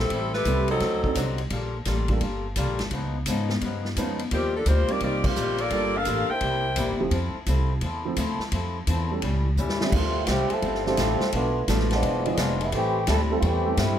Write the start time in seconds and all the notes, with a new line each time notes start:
0.00 G3 C4 E4 A4
0.10 A1 A2 G3 C4 E4, kick, ride
0.34 A3 E4 G4 B4, snare
0.45 C2 A2 G3 A3 C4 E4 A4, kick, hi-hat pedal, ride
0.68 F#3 C4 D#4 A4, ride
0.80 D2 D3 F#3 C4 D#4, kick, snare, ride
1.04 F#3 C4 D4 D#4 A4, kick
1.15 C2 D3 F#3 C4 D#4, kick, hi-hat pedal, ride
1.38 ride
1.50 A#1 G3 A#3 F4 A4, kick, ride
1.85 A1 G3 A#3 F4 A4, kick, snare, hi-hat pedal, ride
2.08 G3 A#3 D4 F4 A4, kick, ride
2.20 G1 G3 A#3 F4 A4, kick, ride
2.56 C2 G3 A#3 F4 A4, kick, hi-hat pedal, ride
2.68 A#1
2.79 G1, snare, ride
2.91 C#2 C#3 F3 B3, kick, ride
2.95 D#4
3.26 G#2 C#3 F3 B3, kick, hi-hat pedal, ride
3.30 D#4
3.49 snare
3.61 G2 C#3 F3 B3 D#4, kick, ride
3.85 snare
3.96 F2 C#3 F3 G#3 B3 C#4 D#4 F4 B4, kick, hi-hat pedal, ride
4.19 ride
4.31 D#2 D#3 F3 G3 A#3 C4 F4 G4, kick, ride
4.56 F3 A#3 D4 A4
4.66 D2 D#3 G3 A#3 C4 F4 G4 C5, kick, hi-hat pedal, ride
4.88 G3 A#3 C4 D#4 F4 G4 A#4 D5, muted upright bass stroke, ride
5.00 C2 D#3 G3 A#3 C4 F4 G4 D5, kick, ride
5.04 D#4
5.24 A#3 F4 G4 C5, kick, crash
5.36 A#1 D#3 G3 C4 F4, hi-hat pedal
5.58 A#3 F4 A4 D5, ride
5.70 G1 G3 A#3 D4 F4 A4, kick, ride
5.96 D4 A4 A#4 F5
6.05 A1 G3 A#3 F4 A4, kick, hi-hat pedal, ride
6.29 E4 A#4 C5 G5, muted upright bass stroke
6.41 C2 C3 G3 A#3 E4, kick, ride
6.76 A#1 C3 G3 A#3 E4, kick, hi-hat pedal, ride
6.89 G1
7.00 E1 F3 A3 C4 E4 G4
7.11 F2 F3 C4 E4 A4, kick, ride
7.35 muted upright bass stroke
7.46 C2 F3 C4 E4 A4, kick, hi-hat pedal, ride
7.81 E2 F3 C4 E4, kick, ride
7.86 A4
8.05 F3 A3 C4 E4 A4
8.16 D2 F3 C4 E4 A4, kick, hi-hat pedal, ride
8.39 muted upright bass stroke, snare
8.52 F2 F3 C4 E4 A4, kick, ride
8.87 E2 F3 C4 E4 A4, kick, hi-hat pedal, ride
9.11 G3 A3 C#4 E4 A4
9.22 C#2 A2 G3 C#4, kick, ride
9.26 E4
9.56 D#2 A2 G3 C#4, hi-hat pedal
9.60 E4
9.69 snare
9.81 F3 G3 A3 C4 C#4 D4 E4 G4, snare
9.92 D2 D3 G3 A3 C4 E4 F4, kick, crash
9.97 F4
10.27 C2 D3 F3 G3 C4 E4 G4, kick, snare, hi-hat pedal, ride
10.31 F4
10.50 F3 C4 E4 A4, muted upright bass stroke, ride
10.62 G1 D3 G3 C4, kick, ride
10.66 F4
10.75 snare
10.86 F3 C4 D4 E4 G4 A4, snare
10.97 A1 D3 G3 C4 F4, kick, snare, hi-hat pedal, ride
11.20 muted upright bass stroke, snare
11.32 B1 B2 A3 B3 D4 F4, kick, ride
11.68 A1 B2 F3 A3 B3 D4 F4 A4, kick, snare, hi-hat pedal, ride
11.80 snare
11.91 F3 G#3 B3 D4, snare, ride
12.02 E1 E3 G#3 D4 F4, kick, ride
12.25 F3 B3 D4 E4 G#4, ride
12.37 F1 E3 G#3 D4 F4, kick, snare, hi-hat pedal, ride
12.61 G#3 B3 D4 E4, ride
12.72 A1 A2 E3 G3 A3 C4 E4 G4, kick, ride
13.07 D2 A2 G3 C4 E4 A4, kick, snare, hi-hat pedal, ride
13.31 G3 A3 C4 E4 A4
13.38 F4
13.42 E2 A2 E3 G3 A3 C4 E4 G4, kick, ride
13.65 G3 A3 C4 E4 A4
13.77 G2 A2 G3 A3 C4 E4, kick, snare, hi-hat pedal, ride